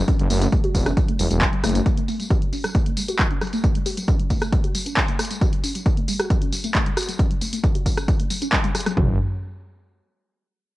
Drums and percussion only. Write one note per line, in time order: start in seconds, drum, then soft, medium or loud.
0.08 kick loud
0.08 closed hi-hat medium
0.20 closed hi-hat medium
0.30 open hi-hat loud
0.30 tambourine medium
0.42 closed hi-hat medium
0.42 tambourine soft
0.53 kick loud
0.53 closed hi-hat medium
0.64 closed hi-hat soft
0.75 kick medium
0.75 open hi-hat loud
0.75 tambourine medium
0.86 cross-stick medium
0.86 closed hi-hat medium
0.86 tambourine soft
0.97 kick loud
0.97 closed hi-hat medium
0.97 tambourine soft
1.08 closed hi-hat soft
1.19 open hi-hat loud
1.19 tambourine medium
1.31 closed hi-hat medium
1.31 tambourine soft
1.41 kick loud
1.41 clap loud
1.41 closed hi-hat medium
1.41 tambourine soft
1.53 closed hi-hat medium
1.64 cross-stick medium
1.64 open hi-hat loud
1.64 tambourine medium
1.69 closed hi-hat medium
1.75 closed hi-hat medium
1.75 tambourine soft
1.86 kick loud
1.86 closed hi-hat medium
1.86 tambourine soft
1.97 closed hi-hat medium
2.08 open hi-hat loud
2.08 tambourine medium
2.20 closed hi-hat medium
2.20 tambourine soft
2.30 kick loud
2.30 closed hi-hat soft
2.42 closed hi-hat soft
2.53 open hi-hat loud
2.53 tambourine medium
2.64 cross-stick medium
2.64 closed hi-hat medium
2.64 tambourine soft
2.75 kick loud
2.75 closed hi-hat medium
2.75 tambourine soft
2.86 closed hi-hat soft
2.97 open hi-hat loud
2.97 tambourine medium
3.08 closed hi-hat medium
3.08 tambourine soft
3.19 kick loud
3.19 clap loud
3.19 closed hi-hat medium
3.19 tambourine soft
3.31 closed hi-hat medium
3.41 cross-stick medium
3.41 open hi-hat loud
3.41 tambourine medium
3.47 closed hi-hat medium
3.53 closed hi-hat soft
3.53 tambourine soft
3.64 kick loud
3.64 closed hi-hat medium
3.64 tambourine soft
3.75 closed hi-hat medium
3.86 open hi-hat loud
3.86 tambourine medium
3.97 closed hi-hat medium
3.97 tambourine soft
4.08 kick loud
4.08 closed hi-hat medium
4.20 closed hi-hat soft
4.30 kick medium
4.30 open hi-hat loud
4.30 tambourine medium
4.42 cross-stick medium
4.42 closed hi-hat medium
4.42 tambourine soft
4.53 kick loud
4.53 closed hi-hat medium
4.53 tambourine soft
4.64 closed hi-hat soft
4.75 open hi-hat loud
4.75 tambourine medium
4.86 closed hi-hat soft
4.86 tambourine soft
4.97 kick loud
4.97 clap loud
4.97 closed hi-hat medium
5.08 closed hi-hat medium
5.19 cross-stick medium
5.19 open hi-hat loud
5.19 tambourine medium
5.25 closed hi-hat medium
5.31 closed hi-hat soft
5.31 tambourine soft
5.41 kick loud
5.41 closed hi-hat medium
5.41 tambourine soft
5.53 closed hi-hat medium
5.64 open hi-hat loud
5.64 tambourine medium
5.75 closed hi-hat medium
5.75 tambourine soft
5.86 kick loud
5.86 closed hi-hat medium
5.86 tambourine soft
5.97 closed hi-hat medium
6.08 open hi-hat loud
6.08 tambourine medium
6.20 cross-stick medium
6.20 closed hi-hat medium
6.20 tambourine soft
6.30 kick loud
6.30 closed hi-hat medium
6.30 tambourine soft
6.42 closed hi-hat soft
6.53 open hi-hat loud
6.53 tambourine medium
6.64 closed hi-hat medium
6.64 tambourine soft
6.75 kick loud
6.75 clap loud
6.75 closed hi-hat medium
6.75 tambourine soft
6.86 closed hi-hat medium
6.97 cross-stick medium
6.97 open hi-hat loud
6.97 tambourine medium
7.03 closed hi-hat medium
7.09 closed hi-hat medium
7.09 tambourine soft
7.19 kick loud
7.19 closed hi-hat medium
7.31 closed hi-hat medium
7.42 open hi-hat loud
7.42 tambourine medium
7.53 closed hi-hat medium
7.53 tambourine soft
7.64 kick loud
7.64 closed hi-hat medium
7.64 tambourine soft
7.75 closed hi-hat medium
7.86 kick medium
7.86 open hi-hat loud
7.86 tambourine medium
7.97 cross-stick medium
7.97 closed hi-hat medium
7.97 tambourine soft
8.08 kick loud
8.08 closed hi-hat medium
8.08 tambourine soft
8.20 closed hi-hat medium
8.30 open hi-hat loud
8.30 tambourine medium
8.42 closed hi-hat medium
8.42 tambourine soft
8.53 kick loud
8.53 clap loud
8.53 closed hi-hat medium
8.53 tambourine soft
8.64 closed hi-hat medium
8.75 cross-stick medium
8.75 open hi-hat loud
8.75 tambourine medium
8.81 closed hi-hat medium
8.86 cross-stick medium
8.86 closed hi-hat medium
8.86 tambourine soft
8.97 kick loud
8.97 floor tom loud